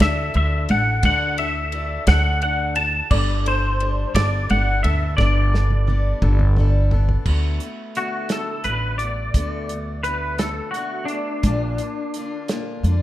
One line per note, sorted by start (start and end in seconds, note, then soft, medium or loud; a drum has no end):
0.00 0.31 D2 loud
0.00 0.33 D3 medium
0.00 0.34 D4 medium
0.00 0.34 F#4 medium
0.00 0.35 A4 medium
0.00 0.36 E5 loud
0.00 kick medium
0.00 snare loud
0.00 ride loud
0.34 0.66 D2 medium
0.34 0.69 D3 medium
0.34 0.69 D4 medium
0.34 0.68 F#4 medium
0.34 0.68 A4 medium
0.34 0.70 E5 loud
0.34 ride medium
0.69 1.00 A1 medium
0.69 1.04 D4 soft
0.69 1.04 F#4 medium
0.69 1.04 A4 medium
0.69 1.04 F#5 loud
0.69 ride medium
1.03 1.96 D2 loud
1.03 1.39 D3 medium
1.03 1.39 D4 medium
1.03 1.38 F#4 medium
1.03 1.37 A4 medium
1.03 1.38 F#5 loud
1.03 kick loud
1.03 ride loud
1.38 1.73 D4 soft
1.38 1.73 F#4 soft
1.38 1.73 A4 medium
1.38 2.08 E5 loud
1.38 ride medium
1.72 2.08 D3 medium
1.72 2.08 D4 medium
1.72 2.07 F#4 medium
1.72 2.07 A4 medium
1.72 ride medium
2.07 3.00 D2 loud
2.07 2.40 D3 medium
2.07 2.41 D4 medium
2.07 2.42 F#4 medium
2.07 2.42 A4 medium
2.07 2.42 F#5 loud
2.07 kick medium
2.07 snare loud
2.07 ride loud
2.42 2.76 D3 medium
2.42 2.77 D4 medium
2.42 2.76 F#4 medium
2.42 2.75 A4 medium
2.42 2.75 F#5 loud
2.42 ride medium
2.76 3.10 D4 soft
2.76 3.11 F#4 medium
2.76 3.11 A4 medium
2.76 3.08 A5 loud
2.76 ride medium
3.11 4.04 G1 loud
3.11 3.45 G3 medium
3.11 3.46 B3 medium
3.11 3.46 D4 medium
3.11 3.44 A4 medium
3.11 3.47 D5 loud
3.11 kick loud
3.11 crash loud
3.45 3.80 D4 soft
3.45 3.80 A4 medium
3.45 4.12 C5 loud
3.45 ride medium
3.80 4.15 G3 medium
3.80 4.14 D4 medium
3.80 4.13 A4 medium
3.80 ride medium
4.14 4.46 G1 loud
4.14 4.48 G3 medium
4.14 4.49 B3 medium
4.14 4.49 D4 medium
4.14 4.49 A4 medium
4.14 4.50 D5 loud
4.14 kick medium
4.14 snare loud
4.14 ride loud
4.49 4.81 G1 medium
4.49 4.84 G3 medium
4.49 4.84 B3 medium
4.49 4.84 D4 medium
4.49 4.83 A4 medium
4.49 4.83 F#5 loud
4.49 ride medium
4.83 5.15 D2 medium
4.83 5.18 B3 soft
4.83 5.18 D4 soft
4.83 5.19 A4 medium
4.83 5.16 E5 medium
4.83 ride medium
5.17 6.12 G1 loud
5.17 5.53 G3 medium
5.17 5.53 B3 medium
5.17 5.54 D4 medium
5.17 5.52 A4 medium
5.17 6.52 D5 medium
5.17 kick loud
5.17 snare medium
5.53 5.88 B3 soft
5.53 5.87 D4 soft
5.53 5.88 A4 medium
5.53 snare medium
5.70 high tom medium
5.87 6.22 G3 medium
5.87 6.21 B3 medium
5.87 6.21 D4 medium
5.87 6.21 A4 medium
5.87 high tom medium
6.22 7.15 G1 loud
6.22 6.57 G3 medium
6.22 6.57 B3 medium
6.22 6.57 D4 medium
6.22 6.57 A4 medium
6.22 kick medium
6.22 mid tom medium
6.39 mid tom medium
6.57 6.92 G3 medium
6.57 6.92 B3 medium
6.57 6.93 D4 medium
6.57 6.91 A4 medium
6.57 mid tom loud
6.91 7.26 B3 medium
6.91 7.27 D4 medium
6.91 7.27 A4 medium
6.91 floor tom loud
7.09 floor tom medium
7.26 7.58 D2 medium
7.26 7.62 D3 medium
7.26 7.62 A3 medium
7.26 7.62 B3 medium
7.26 7.61 F#4 medium
7.26 kick loud
7.26 crash loud
7.60 7.96 B3 soft
7.60 7.97 F#4 medium
7.60 closed hi-hat medium
7.64 7.96 A3 soft
7.95 8.31 D3 medium
7.95 8.31 A3 medium
7.95 8.31 B3 medium
7.95 8.30 F#4 medium
7.95 8.31 F#4 medium
7.95 closed hi-hat medium
8.29 8.66 D3 soft
8.29 8.67 A3 medium
8.29 8.66 B3 medium
8.29 8.66 F#4 medium
8.29 8.65 A4 medium
8.29 snare loud
8.29 closed hi-hat medium
8.64 9.27 A1 medium
8.64 9.01 D3 medium
8.64 8.98 B4 medium
8.64 closed hi-hat medium
8.68 9.02 A3 medium
8.68 9.01 B3 medium
8.68 9.00 F#4 medium
8.98 9.36 F#4 medium
8.98 10.01 D5 medium
8.98 closed hi-hat medium
9.03 9.35 A3 soft
9.03 9.36 B3 soft
9.34 10.59 D2 medium
9.34 9.71 D3 medium
9.34 9.71 A3 medium
9.34 9.71 B3 medium
9.34 9.70 F#4 medium
9.34 kick loud
9.34 closed hi-hat medium
9.69 10.05 A3 soft
9.69 10.06 B3 soft
9.69 10.05 F#4 soft
9.69 closed hi-hat medium
10.03 10.40 D3 medium
10.03 10.40 A3 medium
10.03 10.39 B3 medium
10.03 10.38 B4 medium
10.03 closed hi-hat medium
10.08 10.39 F#4 medium
10.38 10.74 D3 medium
10.38 10.76 A3 medium
10.38 10.75 B3 medium
10.38 10.75 F#4 medium
10.38 10.70 A4 medium
10.38 snare loud
10.38 closed hi-hat medium
10.71 11.07 F#4 medium
10.71 closed hi-hat medium
10.76 11.10 D3 medium
10.76 11.11 A3 medium
10.76 11.10 B3 medium
10.76 11.08 F#4 medium
11.05 12.43 D4 medium
11.05 closed hi-hat medium
11.10 11.46 A3 soft
11.10 11.45 B3 soft
11.10 11.45 F#4 medium
11.43 11.75 A#1 loud
11.43 11.80 A#2 medium
11.43 11.80 D3 medium
11.43 11.80 A#3 medium
11.43 11.80 D4 medium
11.43 11.79 F4 medium
11.43 kick loud
11.43 closed hi-hat medium
11.78 12.15 D4 soft
11.78 12.14 F4 medium
11.78 closed hi-hat medium
11.82 12.15 A#3 soft
12.14 12.49 D3 medium
12.14 12.50 A#3 medium
12.14 12.50 D4 medium
12.14 closed hi-hat medium
12.18 12.50 F4 medium
12.48 12.83 D3 medium
12.48 12.84 A#3 medium
12.48 12.85 D4 medium
12.48 12.85 F4 medium
12.48 snare loud
12.48 closed hi-hat medium
12.52 12.86 A#2 medium
12.83 13.02 F2 medium
12.83 13.02 D3 medium
12.83 13.02 A#3 medium
12.83 13.02 D4 medium
12.83 13.02 F4 medium
12.83 closed hi-hat medium